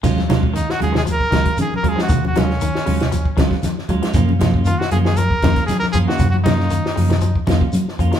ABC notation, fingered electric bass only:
X:1
M:4/4
L:1/16
Q:1/4=117
K:Ebm
V:1 name="Fingered electric bass" clef=bass
E,,6 E,,4 D,, z E, z E,, z | E,,6 E,,4 D,, z E, z E,, z | G,,6 G,,4 F,, z G, z G,, z | G,,6 G,,4 F,, z G, z F,, z |]